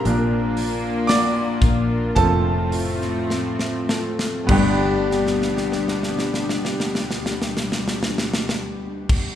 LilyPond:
<<
  \new Staff \with { instrumentName = "Grand piano" } { \time 4/4 \key f \mixolydian \tempo 4 = 49 <bes' bes''>8 r8 <d'' d'''>4 <a' a''>4. r8 | <b d' g'>1 | }
  \new Staff \with { instrumentName = "Grand piano" } { \time 4/4 \key f \mixolydian <f bes d'>4. r8 <f a c'>8 r4. | g,1 | }
  \new Staff \with { instrumentName = "Analog synth pad" } { \time 4/4 \key f \mixolydian << { f'1 | <b d' g'>1 | } \\ { <bes d'>2 <a c'>2 | r1 | } >> }
  \new Staff \with { instrumentName = "Steel-string acoustic guitar" } { \time 4/4 \key f \mixolydian bes,8 bes8 d'8 bes'8 f8 f'8 c'8 a'8 | <g, d g b d' g'>1 | }
  \new Staff \with { instrumentName = "Cello section" } { \clef bass \time 4/4 \key f \mixolydian <bes, bes>2 <a, a>2 | <d, b, g>1 | }
  \new Staff \with { instrumentName = "Fingered electric bass" } { \clef bass \time 4/4 \key f \mixolydian bes,,4. bes,,8 f,,2 | g,,1 | }
  \new DrumStaff \with { instrumentName = "Drums" } \drummode { \time 4/4 <hho hhp>8 <hho hhp>8 <hho hhp sn>8 <hho hhp bd>8 <hho hhp bd>8 <hho hhp>16 sn16 sn16 sn16 sn16 sn16 | <cymc bd>8 sn32 sn32 sn32 sn32 sn32 sn32 sn32 sn32 sn32 sn32 sn32 sn32 sn32 sn32 sn32 sn32 sn32 sn32 sn32 sn32 sn32 sn32 sn8 <cymc bd>16 | }
>>